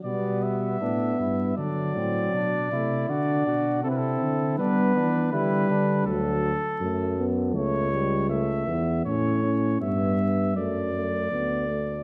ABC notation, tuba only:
X:1
M:4/4
L:1/8
Q:1/4=80
K:G
V:1 name="Tuba" clef=bass
B,,2 A,, G,, D, A,, B,, C, | D, B,, C, D, G, E, D, D, | D,, z F,,2 ^C,,3 E,, | A,,2 G,,2 F,,2 D,,2 |]